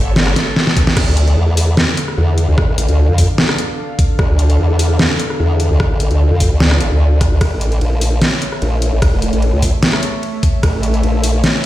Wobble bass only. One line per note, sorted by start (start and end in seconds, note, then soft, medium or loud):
0.00 0.35 G1 loud
0.97 1.36 D2 loud
1.37 1.76 E2 loud
2.18 2.47 E2 loud
2.48 2.67 D2 loud
2.69 2.87 A1 loud
2.89 3.07 D2 medium
3.09 3.27 F2 loud
4.19 4.58 D2 loud
4.59 4.98 E2 loud
5.40 5.69 E2 loud
5.71 5.89 D2 loud
5.91 6.09 A1 loud
6.11 6.29 D2 loud
6.31 6.49 F2 loud
6.51 6.90 D2 loud
6.91 7.30 D2 loud
7.32 7.40 D2 loud
7.41 7.80 A1 loud
7.81 8.20 A#1 loud
8.62 8.91 A#1 loud
8.93 9.11 A1 loud
9.13 9.31 E1 loud
9.33 9.51 A1 loud
9.53 9.71 C#2 loud
10.63 11.02 A1 loud
11.03 11.42 A#1 loud